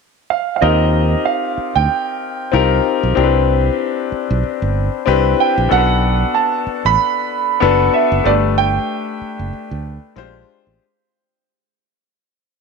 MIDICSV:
0, 0, Header, 1, 5, 480
1, 0, Start_track
1, 0, Tempo, 636943
1, 465, Time_signature, 4, 2, 24, 8
1, 9497, End_track
2, 0, Start_track
2, 0, Title_t, "Grand piano"
2, 0, Program_c, 0, 0
2, 228, Note_on_c, 0, 77, 65
2, 409, Note_off_c, 0, 77, 0
2, 424, Note_on_c, 0, 77, 50
2, 464, Note_on_c, 0, 75, 70
2, 467, Note_off_c, 0, 77, 0
2, 914, Note_off_c, 0, 75, 0
2, 945, Note_on_c, 0, 77, 65
2, 1297, Note_off_c, 0, 77, 0
2, 1322, Note_on_c, 0, 79, 82
2, 2112, Note_off_c, 0, 79, 0
2, 4072, Note_on_c, 0, 79, 77
2, 4289, Note_off_c, 0, 79, 0
2, 4310, Note_on_c, 0, 78, 91
2, 4782, Note_on_c, 0, 81, 69
2, 4799, Note_off_c, 0, 78, 0
2, 5168, Note_on_c, 0, 83, 90
2, 5171, Note_off_c, 0, 81, 0
2, 5954, Note_off_c, 0, 83, 0
2, 5980, Note_on_c, 0, 76, 67
2, 6226, Note_on_c, 0, 74, 77
2, 6227, Note_off_c, 0, 76, 0
2, 6279, Note_off_c, 0, 74, 0
2, 6465, Note_on_c, 0, 79, 95
2, 7634, Note_off_c, 0, 79, 0
2, 9497, End_track
3, 0, Start_track
3, 0, Title_t, "Grand piano"
3, 0, Program_c, 1, 0
3, 458, Note_on_c, 1, 60, 68
3, 461, Note_on_c, 1, 63, 62
3, 466, Note_on_c, 1, 65, 60
3, 471, Note_on_c, 1, 67, 59
3, 474, Note_on_c, 1, 70, 74
3, 584, Control_c, 1, 64, 127
3, 1270, Note_off_c, 1, 60, 0
3, 1271, Note_off_c, 1, 63, 0
3, 1274, Note_off_c, 1, 65, 0
3, 1276, Note_off_c, 1, 67, 0
3, 1278, Note_off_c, 1, 70, 0
3, 1896, Note_on_c, 1, 60, 88
3, 1901, Note_on_c, 1, 63, 77
3, 1906, Note_on_c, 1, 65, 75
3, 1909, Note_on_c, 1, 67, 78
3, 1915, Note_on_c, 1, 70, 91
3, 2310, Note_off_c, 1, 60, 0
3, 2313, Note_off_c, 1, 63, 0
3, 2315, Note_off_c, 1, 65, 0
3, 2317, Note_off_c, 1, 67, 0
3, 2319, Note_off_c, 1, 70, 0
3, 2375, Note_on_c, 1, 60, 84
3, 2377, Note_on_c, 1, 62, 74
3, 2382, Note_on_c, 1, 64, 67
3, 2385, Note_on_c, 1, 67, 77
3, 2391, Note_on_c, 1, 70, 67
3, 2392, Control_c, 1, 64, 0
3, 2440, Note_on_c, 1, 71, 83
3, 2443, Note_off_c, 1, 70, 0
3, 2528, Control_c, 1, 64, 127
3, 3187, Note_off_c, 1, 60, 0
3, 3188, Note_off_c, 1, 62, 0
3, 3190, Note_off_c, 1, 64, 0
3, 3192, Note_off_c, 1, 67, 0
3, 3219, Note_off_c, 1, 71, 0
3, 3811, Note_on_c, 1, 60, 90
3, 3816, Note_on_c, 1, 62, 84
3, 3820, Note_on_c, 1, 64, 77
3, 3824, Note_on_c, 1, 67, 79
3, 3827, Note_on_c, 1, 71, 101
3, 4227, Note_off_c, 1, 60, 0
3, 4229, Note_off_c, 1, 62, 0
3, 4231, Note_off_c, 1, 64, 0
3, 4233, Note_off_c, 1, 67, 0
3, 4235, Note_off_c, 1, 71, 0
3, 4287, Note_on_c, 1, 59, 70
3, 4291, Note_on_c, 1, 62, 62
3, 4296, Note_on_c, 1, 66, 65
3, 4300, Note_on_c, 1, 69, 67
3, 4304, Note_on_c, 1, 70, 60
3, 4309, Control_c, 1, 64, 0
3, 4353, Note_on_c, 1, 71, 80
3, 4358, Note_off_c, 1, 70, 0
3, 4432, Control_c, 1, 64, 127
3, 5103, Note_off_c, 1, 59, 0
3, 5105, Note_off_c, 1, 62, 0
3, 5107, Note_off_c, 1, 66, 0
3, 5110, Note_off_c, 1, 69, 0
3, 5136, Note_off_c, 1, 71, 0
3, 5730, Note_on_c, 1, 59, 89
3, 5733, Note_on_c, 1, 62, 87
3, 5738, Note_on_c, 1, 66, 74
3, 5743, Note_on_c, 1, 69, 83
3, 5747, Note_on_c, 1, 71, 98
3, 6147, Note_off_c, 1, 59, 0
3, 6148, Note_off_c, 1, 62, 0
3, 6151, Note_off_c, 1, 66, 0
3, 6153, Note_off_c, 1, 69, 0
3, 6155, Note_off_c, 1, 71, 0
3, 6210, Note_on_c, 1, 57, 71
3, 6213, Note_on_c, 1, 62, 63
3, 6218, Note_on_c, 1, 69, 61
3, 6222, Note_on_c, 1, 67, 57
3, 6227, Note_on_c, 1, 71, 75
3, 6229, Control_c, 1, 64, 0
3, 6369, Control_c, 1, 64, 127
3, 7026, Note_off_c, 1, 57, 0
3, 7028, Note_off_c, 1, 62, 0
3, 7030, Note_off_c, 1, 69, 0
3, 7032, Note_off_c, 1, 67, 0
3, 7034, Note_off_c, 1, 71, 0
3, 7654, Note_on_c, 1, 56, 78
3, 7658, Note_on_c, 1, 60, 64
3, 7665, Note_on_c, 1, 65, 78
3, 7670, Control_c, 1, 64, 0
3, 7670, Note_on_c, 1, 67, 76
3, 7671, Note_on_c, 1, 72, 99
3, 7709, Note_on_c, 1, 62, 79
3, 7717, Note_off_c, 1, 60, 0
3, 7804, Control_c, 1, 64, 127
3, 8071, Note_off_c, 1, 56, 0
3, 8076, Note_off_c, 1, 65, 0
3, 8079, Note_off_c, 1, 67, 0
3, 8079, Note_off_c, 1, 72, 0
3, 8098, Note_off_c, 1, 62, 0
3, 8153, Control_c, 1, 64, 0
3, 9497, End_track
4, 0, Start_track
4, 0, Title_t, "Fingered electric bass"
4, 0, Program_c, 2, 33
4, 469, Note_on_c, 2, 39, 94
4, 858, Note_off_c, 2, 39, 0
4, 1324, Note_on_c, 2, 38, 64
4, 1405, Note_off_c, 2, 38, 0
4, 1908, Note_on_c, 2, 36, 81
4, 2101, Note_off_c, 2, 36, 0
4, 2286, Note_on_c, 2, 35, 71
4, 2366, Note_off_c, 2, 35, 0
4, 2388, Note_on_c, 2, 36, 88
4, 2776, Note_off_c, 2, 36, 0
4, 3244, Note_on_c, 2, 35, 76
4, 3325, Note_off_c, 2, 35, 0
4, 3482, Note_on_c, 2, 31, 75
4, 3676, Note_off_c, 2, 31, 0
4, 3822, Note_on_c, 2, 36, 81
4, 4017, Note_off_c, 2, 36, 0
4, 4202, Note_on_c, 2, 34, 72
4, 4283, Note_off_c, 2, 34, 0
4, 4306, Note_on_c, 2, 35, 86
4, 4694, Note_off_c, 2, 35, 0
4, 5162, Note_on_c, 2, 33, 62
4, 5243, Note_off_c, 2, 33, 0
4, 5744, Note_on_c, 2, 30, 85
4, 5938, Note_off_c, 2, 30, 0
4, 6117, Note_on_c, 2, 30, 73
4, 6200, Note_off_c, 2, 30, 0
4, 6220, Note_on_c, 2, 31, 91
4, 6612, Note_off_c, 2, 31, 0
4, 7079, Note_on_c, 2, 30, 63
4, 7162, Note_off_c, 2, 30, 0
4, 7320, Note_on_c, 2, 38, 66
4, 7516, Note_off_c, 2, 38, 0
4, 7659, Note_on_c, 2, 34, 98
4, 7856, Note_off_c, 2, 34, 0
4, 8039, Note_on_c, 2, 33, 67
4, 8123, Note_off_c, 2, 33, 0
4, 9497, End_track
5, 0, Start_track
5, 0, Title_t, "Muted fingered electric bass strokes"
5, 1187, Note_on_c, 9, 29, 38
5, 1263, Note_off_c, 9, 29, 0
5, 3105, Note_on_c, 9, 29, 41
5, 3180, Note_off_c, 9, 29, 0
5, 3342, Note_on_c, 9, 29, 44
5, 3417, Note_off_c, 9, 29, 0
5, 5023, Note_on_c, 9, 29, 44
5, 5099, Note_off_c, 9, 29, 0
5, 6943, Note_on_c, 9, 29, 36
5, 7018, Note_off_c, 9, 29, 0
5, 7182, Note_on_c, 9, 29, 42
5, 7258, Note_off_c, 9, 29, 0
5, 9497, End_track
0, 0, End_of_file